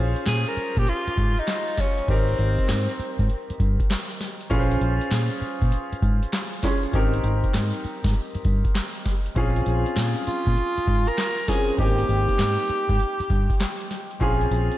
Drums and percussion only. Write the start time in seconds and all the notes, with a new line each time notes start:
0.16 closed hi-hat
0.26 snare, clap, closed hi-hat
0.47 closed hi-hat
0.57 closed hi-hat
0.77 kick, closed hi-hat
0.87 closed hi-hat
1.07 closed hi-hat
1.17 kick, closed hi-hat
1.37 closed hi-hat
1.47 snare, clap, closed hi-hat
1.68 closed hi-hat
1.77 kick, snare, closed hi-hat
1.98 closed hi-hat
2.08 kick, closed hi-hat
2.29 closed hi-hat
2.38 closed hi-hat
2.59 kick, closed hi-hat
2.69 snare, clap, closed hi-hat
2.89 closed hi-hat
2.99 closed hi-hat
3.19 kick, closed hi-hat
3.29 closed hi-hat
3.50 closed hi-hat
3.60 kick, closed hi-hat
3.80 kick, closed hi-hat
3.90 snare, clap, closed hi-hat
4.11 closed hi-hat
4.21 snare, closed hi-hat
4.41 closed hi-hat
4.51 kick, closed hi-hat
4.71 closed hi-hat
4.81 closed hi-hat
5.01 closed hi-hat
5.11 snare, clap, closed hi-hat
5.32 closed hi-hat
5.42 closed hi-hat
5.62 kick, closed hi-hat
5.72 closed hi-hat
5.92 closed hi-hat
6.02 kick, closed hi-hat
6.23 closed hi-hat
6.33 snare, clap, closed hi-hat
6.53 closed hi-hat
6.63 kick, snare, closed hi-hat
6.83 closed hi-hat
6.93 kick, closed hi-hat
7.14 closed hi-hat
7.24 closed hi-hat
7.44 kick, closed hi-hat
7.54 snare, clap, closed hi-hat
7.74 closed hi-hat
7.84 closed hi-hat
8.04 kick, snare, closed hi-hat
8.14 closed hi-hat
8.35 closed hi-hat
8.45 kick, closed hi-hat
8.65 kick, closed hi-hat
8.75 snare, clap, closed hi-hat
8.95 closed hi-hat
9.06 kick, snare, closed hi-hat
9.26 closed hi-hat
9.36 kick, closed hi-hat
9.56 closed hi-hat
9.66 closed hi-hat
9.86 closed hi-hat
9.96 snare, clap, closed hi-hat
10.17 closed hi-hat
10.27 closed hi-hat
10.47 kick, closed hi-hat
10.57 closed hi-hat
10.77 closed hi-hat
10.88 kick, closed hi-hat
11.08 closed hi-hat
11.18 snare, clap, closed hi-hat
11.38 closed hi-hat
11.48 kick, snare, closed hi-hat
11.68 closed hi-hat
11.78 kick, closed hi-hat
11.99 closed hi-hat
12.09 closed hi-hat
12.29 kick, closed hi-hat
12.39 snare, clap, closed hi-hat
12.59 closed hi-hat
12.69 closed hi-hat
12.89 kick, closed hi-hat
13.00 closed hi-hat
13.20 closed hi-hat
13.30 kick, closed hi-hat
13.50 kick, closed hi-hat
13.60 snare, clap, closed hi-hat
13.81 closed hi-hat
13.91 snare, closed hi-hat
14.11 closed hi-hat
14.21 kick, closed hi-hat
14.41 closed hi-hat
14.51 closed hi-hat
14.72 closed hi-hat